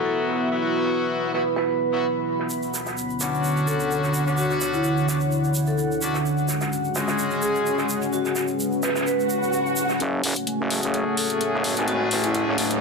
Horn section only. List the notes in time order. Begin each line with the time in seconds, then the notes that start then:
Already playing: F#3 B3 E4 F#4
0.52 F#3 B3 E4 F#4
1.33 F#3 B3 E4 F#4
1.92 F#3 B3 E4 F#4
3.20 B3 C#4 D4 F#4
4.27 B3 C#4 D4 F#4
5.08 B3 C#4 D4 F#4
6.02 B3 C#4 D4 F#4
6.95 G#3 C#4 F#4 G#4
10.70 A3 C#4 F#4 G#4
11.77 A3 C#4 F#4 G#4
12.58 A3 C#4 F#4 G#4